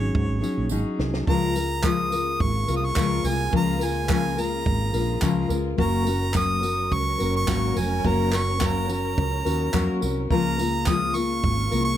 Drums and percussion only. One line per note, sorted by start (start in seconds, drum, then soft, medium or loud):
0.15 kick loud
0.44 tambourine medium
0.69 tambourine medium
1.00 snare medium
1.14 snare medium
1.27 kick loud
1.56 tambourine medium
1.83 kick loud
1.83 clap loud
1.83 tambourine medium
2.12 tambourine medium
2.40 kick loud
2.68 tambourine medium
2.95 kick loud
2.95 clap loud
2.95 tambourine loud
3.25 tambourine medium
3.53 kick loud
3.81 tambourine medium
4.09 kick loud
4.09 clap loud
4.09 tambourine medium
4.38 tambourine medium
4.66 kick loud
4.94 tambourine medium
5.21 kick loud
5.21 clap loud
5.21 tambourine loud
5.50 tambourine medium
5.78 kick loud
6.07 tambourine medium
6.34 kick loud
6.34 clap loud
6.34 tambourine medium
6.63 tambourine medium
6.92 kick loud
7.20 tambourine medium
7.48 kick loud
7.48 clap loud
7.48 tambourine medium
7.77 tambourine medium
8.05 kick loud
8.33 clap loud
8.33 tambourine medium
8.60 kick loud
8.60 clap loud
8.60 tambourine medium
8.89 tambourine medium
9.18 kick loud
9.46 tambourine medium
9.74 kick loud
9.74 clap loud
9.74 tambourine medium
10.02 tambourine medium
10.30 kick loud
10.59 tambourine medium
10.86 kick loud
10.86 clap loud
10.86 tambourine medium
11.15 tambourine medium
11.44 kick loud
11.72 tambourine medium